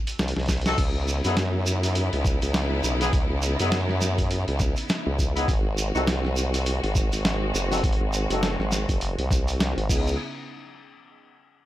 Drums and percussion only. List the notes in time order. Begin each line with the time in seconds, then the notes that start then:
0.07 closed hi-hat, shekere
0.19 snare, shekere
0.28 closed hi-hat
0.36 snare, closed hi-hat
0.40 closed hi-hat
0.43 closed hi-hat
0.46 kick, snare, closed hi-hat
0.49 closed hi-hat, shekere
0.53 closed hi-hat
0.57 closed hi-hat
0.61 closed hi-hat
0.66 snare, closed hi-hat, shekere
0.78 kick, closed hi-hat, crash, shekere
1.08 shekere
1.25 closed hi-hat, shekere
1.37 snare, closed hi-hat, shekere
1.66 shekere
1.83 closed hi-hat, shekere
1.95 closed hi-hat, shekere
2.13 closed hi-hat
2.25 kick, shekere
2.42 closed hi-hat, shekere
2.54 snare, closed hi-hat, shekere
2.84 shekere
3.01 snare, closed hi-hat, shekere
3.13 kick, closed hi-hat, shekere
3.42 shekere
3.59 closed hi-hat, shekere
3.72 snare, closed hi-hat, shekere
3.89 snare
4.01 snare, shekere
4.18 kick, closed hi-hat, shekere
4.31 closed hi-hat, shekere
4.48 closed hi-hat
4.60 kick, snare, shekere
4.77 closed hi-hat, shekere
4.89 snare, closed hi-hat, shekere
5.19 kick, shekere
5.36 closed hi-hat, shekere
5.48 kick, snare, closed hi-hat, shekere
5.78 shekere
5.95 shekere
6.07 snare, closed hi-hat, shekere
6.25 snare
6.36 shekere
6.54 closed hi-hat, shekere
6.66 closed hi-hat, shekere
6.84 closed hi-hat
6.95 kick, shekere
7.12 closed hi-hat, shekere
7.25 snare, closed hi-hat, shekere
7.55 shekere
7.72 snare, closed hi-hat, shekere
7.78 closed hi-hat
7.84 kick, closed hi-hat, shekere
7.93 closed hi-hat
8.13 shekere
8.30 closed hi-hat, shekere
8.43 snare, closed hi-hat, shekere
8.60 snare
8.72 snare, shekere
8.89 kick, closed hi-hat, shekere
9.01 closed hi-hat, shekere
9.19 closed hi-hat
9.31 kick, snare, shekere
9.48 closed hi-hat, shekere
9.60 snare, closed hi-hat, shekere
9.78 closed hi-hat
9.89 kick, crash, shekere
10.07 shekere